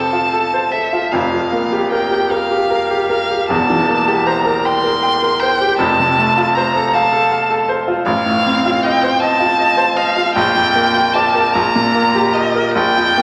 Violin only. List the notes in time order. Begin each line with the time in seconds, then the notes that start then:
Already playing: A5
0.72 E5
1.12 F5
1.91 G5
2.31 F5
3.10 F5
3.49 A5
4.27 A#5
4.65 C6
5.40 G5
5.78 A5
6.55 A#5
6.93 A5
8.06 F5
8.83 G5
9.20 A5
9.97 F5
10.35 G5
11.14 A5
11.54 A#5
12.33 D#5
12.74 G5